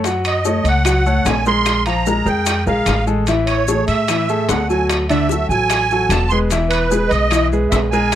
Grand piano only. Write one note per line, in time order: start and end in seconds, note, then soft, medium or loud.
0.05 0.38 F#3 medium
0.05 0.38 F#4 medium
0.05 0.38 F#5 medium
0.45 0.78 A3 medium
0.45 0.78 A4 medium
0.45 0.78 C#5 medium
0.85 1.02 F#3 medium
0.85 1.02 F#4 medium
0.85 1.02 F#5 medium
1.06 1.39 A3 medium
1.06 1.39 A4 medium
1.06 1.39 C#5 medium
1.46 1.79 G#3 medium
1.46 1.79 G#4 medium
1.46 1.80 A#4 medium
1.86 2.03 F3 medium
1.86 2.03 F4 medium
1.86 2.03 F5 medium
2.06 2.23 G#3 medium
2.06 2.23 G#4 medium
2.06 2.23 A#4 medium
2.26 2.59 G#3 medium
2.26 2.59 G#4 medium
2.26 2.60 A#4 medium
2.66 3.00 G#3 medium
2.66 3.00 G#4 medium
2.66 3.00 A#4 medium
3.07 3.24 G#3 medium
3.07 3.24 G#4 medium
3.07 3.24 A4 medium
3.28 3.61 E3 medium
3.28 3.61 E4 medium
3.28 3.61 E5 medium
3.68 4.01 A3 medium
3.68 4.01 G#4 medium
3.68 4.02 A4 medium
4.10 4.26 E3 medium
4.10 4.26 E4 medium
4.10 4.26 E5 medium
4.29 4.62 A3 medium
4.29 4.62 G#4 medium
4.29 4.63 A4 medium
4.70 5.03 F#3 medium
4.70 5.03 F#4 medium
4.70 5.03 A4 medium
5.10 5.26 D3 medium
5.10 5.26 D4 medium
5.10 5.27 D5 medium
5.32 5.47 F#3 medium
5.32 5.48 F#4 medium
5.32 5.48 A4 medium
5.51 5.84 F#3 medium
5.51 5.84 F#4 medium
5.51 5.84 A4 medium
5.92 6.24 F#3 medium
5.92 6.24 F#4 medium
5.92 6.25 A4 medium
6.32 6.48 G#3 medium
6.32 6.48 G#4 medium
6.32 6.48 B4 medium
6.51 6.84 E3 medium
6.51 6.84 E4 medium
6.51 6.85 E5 medium
6.91 7.24 G#3 medium
6.91 7.24 G#4 medium
6.91 7.24 B4 medium
7.31 7.48 E3 medium
7.31 7.48 E4 medium
7.31 7.48 E5 medium
7.52 7.85 G#3 medium
7.52 7.85 G#4 medium
7.52 7.86 B4 medium
7.92 8.15 G#3 medium
7.92 8.15 G#4 medium
7.92 8.15 A#4 medium